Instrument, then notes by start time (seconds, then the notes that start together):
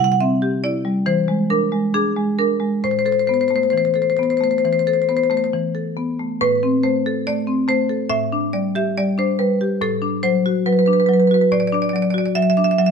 marimba
Already playing: C3 E4
0.00 G3
0.04 F#5
0.12 F#5
0.20 C4 E5
0.42 G4
0.64 E4 D5
0.85 G3
1.06 E3 C5
1.28 G#3
1.50 D4 A#4
1.72 G#3
1.94 D4 G#4
2.16 G#3
2.39 D4 A#4
2.60 G#3
2.84 A2 C5
2.91 C5
2.99 C5
3.06 A4 C5
3.12 C5
3.20 C5
3.27 B3 C5
3.34 C5
3.41 C5
3.48 A3 C5
3.56 C5
3.63 C5
3.70 E3 C5
3.78 C5
3.85 C5
3.94 A4 C5
4.02 C5
4.10 C5
4.17 B3 C5
4.23 C5
4.30 C5
4.37 A3 C5
4.44 C5
4.51 C5
4.58 C5
4.65 E3 C5
4.73 C5
4.79 C5
4.87 A4 C5
4.94 C5
5.02 C5
5.09 B3 C5
5.17 C5
5.24 C5
5.30 A3 C5
5.37 C5
5.44 C5
5.54 E3
5.75 A4
5.97 B3
6.20 A3
6.41 A2 B4
6.63 C4
6.83 A3 C5
7.06 A4
7.27 A3 D5
7.47 C4
7.68 A3 C5
7.89 A4
8.10 A2 E5
8.32 D4
8.53 G3 D5
8.75 G4 E5
8.98 G3 D5
9.18 D4 C5
9.39 G3 B4
9.61 G4
9.81 A2 A4
10.02 D4
10.23 F#3 C5
10.46 F#4
10.66 F#3 B4
10.73 B4
10.79 B4
10.86 D4 B4
10.93 B4
11.00 B4
11.06 F#3 B4
11.14 B4
11.20 B4
11.27 F#4 B4
11.34 B4
11.41 B4
11.52 A2 D5
11.60 D5
11.67 D5
11.72 D4 D5
11.82 D5
11.89 D5
11.94 F#3 D5
12.02 D5
12.10 F#4 D5
12.18 D5
12.26 D5
12.35 F#3 E5
12.42 E5
12.50 E5
12.57 D4 E5
12.64 E5
12.71 E5
12.78 F#3 E5
12.86 E5